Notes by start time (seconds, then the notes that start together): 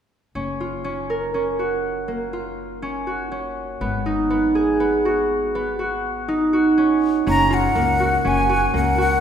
0.35 F#1 C#4
0.60 F4
0.84 C#4
1.10 A#4
1.34 C#4
1.59 F#4
2.08 A#3
2.33 F4
2.82 C#4
3.07 F#4
3.32 C#4
3.81 G#1 B3
4.06 D#4
4.30 B3
4.55 G#4
4.80 B3
5.05 F#4
5.55 B3
5.79 F#4
6.28 D#4
6.53 F#4
6.78 C#4
7.26 F#1 C#4 A#5
7.50 F4 F#5
7.75 C#2 A#3
8.00 F#4
8.25 F#1 C#4 G#5
8.49 F#4
8.74 C#2 A#3 F#5
8.98 F#4 F#5